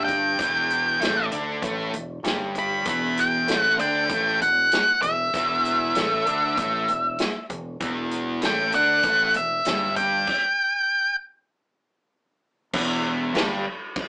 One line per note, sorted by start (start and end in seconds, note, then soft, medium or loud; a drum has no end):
0.00 0.34 G1 medium
0.00 0.38 G2 medium
0.00 0.38 G3 medium
0.05 1.26 G5 medium
0.05 kick medium
0.05 closed hi-hat medium
0.39 0.96 E1 medium
0.39 1.00 E2 medium
0.39 1.00 E3 loud
0.39 kick loud
0.39 closed hi-hat medium
0.70 closed hi-hat medium
1.00 1.29 A1 medium
1.00 1.30 A2 medium
1.00 1.30 A3 medium
1.00 snare loud
1.00 closed hi-hat medium
1.31 1.60 D2 medium
1.31 1.61 D3 medium
1.31 1.62 D4 medium
1.31 closed hi-hat medium
1.62 1.91 A1 loud
1.62 1.92 A2 medium
1.62 1.93 A3 loud
1.62 kick medium
1.62 closed hi-hat medium
1.92 2.21 E1 medium
1.92 2.18 E2 medium
1.92 closed hi-hat medium
2.23 2.81 G1 medium
2.23 2.85 G2 medium
2.23 2.85 G3 medium
2.23 snare loud
2.23 closed hi-hat medium
2.55 2.88 B5 medium
2.55 kick medium
2.55 closed hi-hat medium
2.85 3.44 E1 medium
2.85 3.47 E2 medium
2.85 3.47 E3 medium
2.85 kick loud
2.85 closed hi-hat medium
2.89 3.19 B5 loud
3.17 3.60 G5 medium
3.17 closed hi-hat medium
3.48 3.76 A1 medium
3.48 3.78 A2 medium
3.48 3.78 A3 medium
3.48 snare loud
3.48 closed hi-hat medium
3.60 3.76 F#5 medium
3.78 4.07 D2 medium
3.78 4.09 D3 medium
3.78 4.09 D4 medium
3.78 4.42 G5 medium
3.78 closed hi-hat medium
4.09 4.39 A1 medium
4.09 4.40 A2 medium
4.09 4.40 A3 loud
4.09 kick loud
4.09 closed hi-hat medium
4.41 4.70 E1 medium
4.41 4.65 E2 medium
4.41 5.02 F#5 medium
4.41 closed hi-hat medium
4.71 snare loud
4.71 closed hi-hat medium
5.02 5.31 E1 medium
5.02 5.28 E2 medium
5.02 7.45 E5 medium
5.02 kick medium
5.02 closed hi-hat medium
5.34 5.91 E1 medium
5.34 5.95 E2 medium
5.34 5.95 E3 loud
5.34 kick loud
5.34 closed hi-hat medium
5.65 closed hi-hat medium
5.95 6.24 A1 medium
5.95 6.25 A2 medium
5.95 6.26 A3 medium
5.95 snare loud
5.95 closed hi-hat medium
6.26 6.55 D2 medium
6.26 6.56 D3 medium
6.26 6.56 D4 loud
6.26 closed hi-hat medium
6.57 6.86 A1 medium
6.57 6.87 A2 medium
6.57 6.88 A3 medium
6.57 kick loud
6.57 closed hi-hat medium
6.88 7.17 E1 medium
6.88 7.13 E2 medium
6.88 closed hi-hat medium
7.18 snare loud
7.18 closed hi-hat medium
7.50 7.79 E1 medium
7.50 7.74 E2 medium
7.50 kick medium
7.50 closed hi-hat soft
7.80 8.38 E1 medium
7.80 8.41 E2 medium
7.80 8.41 E3 loud
7.80 kick loud
7.80 closed hi-hat medium
8.11 closed hi-hat medium
8.42 8.71 A1 medium
8.42 8.72 A2 medium
8.42 8.72 A3 medium
8.42 snare loud
8.42 closed hi-hat medium
8.46 8.74 G5 medium
8.72 9.02 D2 medium
8.72 9.03 D3 medium
8.72 9.04 D4 medium
8.72 9.36 F#5 loud
8.72 closed hi-hat medium
9.03 9.32 A1 loud
9.03 9.34 A2 medium
9.03 9.34 A3 loud
9.03 kick loud
9.03 closed hi-hat medium
9.34 9.63 E1 medium
9.34 9.60 E2 medium
9.34 9.96 E5 medium
9.34 closed hi-hat medium
9.65 10.23 G1 medium
9.65 10.26 G2 medium
9.65 10.27 G3 medium
9.65 snare medium
9.65 closed hi-hat medium
9.96 11.15 G5 medium
9.96 kick medium
9.96 closed hi-hat medium
10.27 kick loud
10.27 crash medium
12.73 13.30 E1 medium
12.73 13.34 E2 medium
12.73 13.34 E3 loud
12.73 kick loud
12.73 crash loud
12.73 crash medium
13.35 13.63 G1 medium
13.35 13.64 G2 medium
13.35 13.65 G3 loud
13.35 snare loud
13.35 crash medium
13.96 kick loud
13.96 crash medium